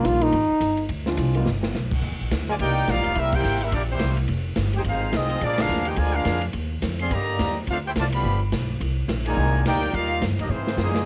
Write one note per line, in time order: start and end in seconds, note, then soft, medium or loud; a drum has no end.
0.00 0.21 D#3 medium
0.00 0.21 G3 medium
0.00 0.21 A#3 medium
0.00 0.21 D4 medium
0.00 0.21 F4 medium
0.05 0.32 A#1 loud
0.05 0.24 F4 loud
0.05 kick soft
0.05 hi-hat pedal medium
0.05 ride medium
0.21 0.33 D#3 medium
0.21 0.33 G3 medium
0.21 0.33 A#3 medium
0.21 0.33 D4 medium
0.21 0.90 D#4 medium
0.21 0.33 F4 medium
0.21 ride medium
0.32 0.49 G#1 loud
0.32 kick soft
0.32 ride medium
0.51 muted upright bass stroke soft
0.61 0.88 G1 medium
0.61 kick soft
0.61 hi-hat pedal medium
0.61 ride medium
0.77 ride medium
0.89 1.17 D2 medium
0.89 kick soft
0.89 ride medium
1.06 1.33 F3 medium
1.06 1.33 G#3 medium
1.06 1.33 C4 medium
1.06 1.33 D4 medium
1.06 1.34 F4 medium
1.06 snare medium
1.17 1.45 C2 loud
1.17 kick soft
1.17 hi-hat pedal medium
1.17 ride medium
1.34 1.46 G3 medium
1.34 1.46 A#3 medium
1.34 1.46 B3 medium
1.34 1.46 D#4 medium
1.34 1.46 F4 medium
1.34 ride medium
1.46 1.74 G1 loud
1.46 snare medium
1.63 snare medium
1.74 2.02 B1 medium
1.74 snare medium
1.74 hi-hat pedal medium
1.91 kick medium
1.91 crash medium
2.02 2.13 D#2 medium
2.02 kick soft
2.11 2.20 C2 medium
2.21 2.30 A#1 medium
2.31 2.59 D2 loud
2.31 kick soft
2.31 snare medium
2.31 hi-hat pedal medium
2.31 ride medium
2.48 2.53 G#3 medium
2.48 2.54 F4 medium
2.48 2.54 A#4 medium
2.48 2.55 D5 medium
2.48 2.54 G#5 medium
2.59 2.87 C2 loud
2.59 2.86 A#3 loud
2.59 2.86 D#4 medium
2.59 2.87 D#4 loud
2.59 2.86 G4 medium
2.59 2.87 A#4 medium
2.59 2.87 D5 medium
2.59 2.87 G5 loud
2.59 kick soft
2.59 ride medium
2.88 2.98 A#1 medium
2.88 3.15 G3 loud
2.88 3.15 A#3 loud
2.88 3.17 D#4 medium
2.88 3.16 F4 loud
2.88 3.17 A#4 medium
2.88 3.17 D5 medium
2.88 3.17 F5 loud
2.88 kick soft
2.88 snare medium
2.88 hi-hat pedal medium
2.88 ride medium
2.96 3.05 G1 medium
3.04 3.15 D#1 medium
3.04 ride medium
3.15 3.43 C2 medium
3.15 3.33 G3 medium
3.15 3.32 A#3 medium
3.15 3.33 E4 medium
3.15 3.34 E5 loud
3.15 kick soft
3.15 ride medium
3.19 3.34 C4 medium
3.19 3.34 G4 medium
3.19 3.34 A#4 medium
3.32 3.60 A#3 loud
3.32 3.61 E4 medium
3.32 3.62 E4 loud
3.32 3.61 G4 medium
3.32 3.62 A#4 medium
3.32 3.62 C5 medium
3.32 3.62 G5 loud
3.32 kick loud
3.32 crash medium
3.43 3.71 G#1 loud
3.43 hi-hat pedal medium
3.61 3.73 G3 medium
3.61 3.73 A#3 medium
3.61 3.73 C4 medium
3.61 3.73 E4 medium
3.61 3.74 G4 medium
3.61 3.74 A#4 medium
3.61 3.74 E5 medium
3.61 ride medium
3.72 3.99 A#1 loud
3.72 3.82 A#3 medium
3.72 3.80 D4 medium
3.72 3.82 E4 medium
3.72 3.82 G4 medium
3.72 3.82 D5 medium
3.72 kick soft
3.72 ride medium
3.88 4.15 E3 medium
3.88 4.15 G3 medium
3.88 4.17 A#3 medium
3.88 4.15 C4 medium
3.88 4.17 E4 medium
3.88 4.17 G4 medium
3.88 4.17 C5 medium
3.99 4.27 C2 loud
3.99 kick soft
3.99 snare medium
3.99 hi-hat pedal medium
3.99 ride medium
4.17 ride medium
4.28 4.55 F1 medium
4.28 kick soft
4.28 ride medium
4.56 4.84 G1 loud
4.56 kick soft
4.56 snare medium
4.56 hi-hat pedal medium
4.56 ride medium
4.73 4.79 G4 medium
4.73 ride medium
4.78 4.82 D#4 medium
4.78 4.82 G#4 medium
4.78 4.82 C5 medium
4.78 4.82 G5 medium
4.84 5.12 G#1 loud
4.84 5.12 G#3 medium
4.84 5.11 C4 medium
4.84 5.12 F4 medium
4.84 kick soft
4.84 ride medium
4.89 5.13 D#4 medium
4.89 5.13 G#4 medium
4.89 5.13 C5 medium
4.89 5.13 F5 medium
5.12 5.40 C2 medium
5.12 5.40 G#3 medium
5.12 5.42 C4 medium
5.12 5.41 D#4 medium
5.12 5.43 G#4 medium
5.12 kick soft
5.12 snare medium
5.12 hi-hat pedal medium
5.12 ride medium
5.17 5.43 C4 medium
5.17 5.43 F4 medium
5.17 5.43 D#5 loud
5.30 ride medium
5.41 5.68 A#1 loud
5.41 5.58 F3 medium
5.41 5.57 G#3 medium
5.41 5.60 A#3 medium
5.41 5.58 D4 medium
5.41 5.60 F4 medium
5.41 5.60 G#4 medium
5.41 5.60 D5 loud
5.41 kick soft
5.41 ride medium
5.58 5.87 G#3 medium
5.58 5.87 D4 medium
5.58 5.88 D4 loud
5.58 5.87 F4 medium
5.58 5.87 G#4 loud
5.58 5.88 A#4 loud
5.58 5.88 F5 loud
5.58 snare loud
5.58 ride medium
5.69 5.97 D#2 loud
5.69 hi-hat pedal medium
5.85 5.99 D#4 medium
5.85 5.98 G4 medium
5.85 5.99 G#4 medium
5.85 5.99 C5 medium
5.85 5.99 G5 medium
5.85 ride medium
5.96 6.24 D2 loud
5.96 6.15 D3 medium
5.96 6.14 F3 medium
5.96 6.13 G#3 medium
5.96 6.15 F4 medium
5.96 6.14 A#4 medium
5.96 6.15 D5 loud
5.96 6.15 G#5 loud
5.96 kick soft
5.96 ride medium
6.14 6.43 G#3 medium
6.14 6.43 D4 medium
6.14 6.42 F4 medium
6.14 6.43 G#4 medium
6.14 6.43 A#4 medium
6.14 6.43 F5 loud
6.25 6.53 F2 medium
6.25 kick soft
6.25 snare medium
6.25 hi-hat pedal medium
6.25 ride medium
6.41 ride soft
6.53 6.81 D#2 medium
6.53 kick soft
6.53 ride medium
6.82 7.10 F2 loud
6.82 kick soft
6.82 snare medium
6.82 hi-hat pedal medium
6.82 ride medium
6.99 7.11 C4 medium
6.99 7.11 G#4 medium
6.99 7.11 D5 medium
6.99 7.11 F5 medium
6.99 7.11 C6 medium
6.99 ride medium
7.11 7.38 G2 loud
7.11 7.57 D3 medium
7.11 7.57 G3 medium
7.11 7.57 A#3 medium
7.11 7.57 G4 medium
7.11 7.57 D5 medium
7.11 7.57 D#5 medium
7.11 7.57 A#5 loud
7.11 kick soft
7.11 ride medium
7.39 7.66 D#2 medium
7.39 kick soft
7.39 snare medium
7.39 hi-hat pedal medium
7.39 ride medium
7.67 7.95 D2 medium
7.67 7.76 A3 medium
7.67 7.76 C4 medium
7.67 7.78 D4 medium
7.67 7.76 F4 medium
7.67 7.78 F5 loud
7.67 kick soft
7.67 ride medium
7.71 7.78 A4 medium
7.71 7.78 C5 medium
7.86 7.92 E4 medium
7.86 7.91 G4 medium
7.86 7.92 A4 medium
7.86 7.92 C5 medium
7.86 7.92 G5 medium
7.96 8.23 C2 loud
7.96 8.04 C3 medium
7.96 8.04 F3 medium
7.96 8.04 A3 medium
7.96 8.06 F4 medium
7.96 8.05 C5 medium
7.96 8.06 D5 medium
7.96 8.06 A5 loud
7.96 kick soft
7.96 snare medium
7.96 hi-hat pedal medium
7.96 ride medium
8.13 8.39 D3 medium
8.13 8.39 F3 medium
8.13 8.39 B3 medium
8.13 8.40 G4 medium
8.13 8.40 D5 medium
8.13 8.40 F5 medium
8.13 8.40 B5 medium
8.13 ride medium
8.24 8.51 G1 loud
8.24 kick soft
8.52 8.79 B1 medium
8.52 kick soft
8.52 snare medium
8.52 hi-hat pedal medium
8.52 ride medium
8.80 9.08 C2 medium
8.80 kick soft
8.80 ride medium
9.08 9.36 A#1 loud
9.08 kick soft
9.08 snare medium
9.08 hi-hat pedal medium
9.08 ride medium
9.25 9.62 A#2 loud
9.25 9.62 D#3 loud
9.25 9.62 G#3 loud
9.25 9.63 D#4 medium
9.25 9.63 A#4 medium
9.25 9.63 D5 medium
9.25 9.63 G#5 medium
9.25 ride medium
9.37 9.64 C2 loud
9.37 kick soft
9.65 9.93 D2 medium
9.65 9.91 A#3 loud
9.65 9.91 D#4 loud
9.65 9.92 D#4 medium
9.65 9.91 G4 loud
9.65 9.92 A#4 loud
9.65 9.92 D5 loud
9.65 9.92 G5 loud
9.65 kick soft
9.65 snare medium
9.65 hi-hat pedal medium
9.65 ride medium
9.83 ride medium
9.93 10.21 D#2 loud
9.93 10.21 G3 loud
9.93 10.21 A#3 loud
9.93 10.22 D#4 medium
9.93 10.21 F4 medium
9.93 10.22 A#4 medium
9.93 10.23 D5 medium
9.93 10.22 F5 loud
9.93 kick soft
9.93 ride medium
10.21 10.32 G2 loud
10.21 kick soft
10.21 snare medium
10.21 hi-hat pedal medium
10.21 ride medium
10.30 10.38 D#2 medium
10.37 10.48 C2 medium
10.37 10.48 G3 medium
10.37 10.48 A#3 medium
10.37 10.50 A#3 medium
10.37 10.50 D4 medium
10.37 10.48 D#4 medium
10.37 10.50 G4 medium
10.37 10.50 D#5 medium
10.37 ride medium
10.49 10.77 G#2 loud
10.49 10.79 E3 medium
10.49 10.79 G#3 medium
10.49 10.80 A#3 medium
10.49 10.96 C4 medium
10.49 10.95 E4 medium
10.49 10.81 G#4 medium
10.49 10.95 C5 medium
10.67 snare medium
10.77 11.05 F#2 medium
10.77 11.05 A#2 medium
10.77 11.05 E3 medium
10.77 11.05 G#3 medium
10.77 snare medium
10.77 hi-hat pedal medium
10.81 11.05 A#3 medium
10.81 11.05 D#4 medium
10.81 11.05 G#4 loud
10.95 snare medium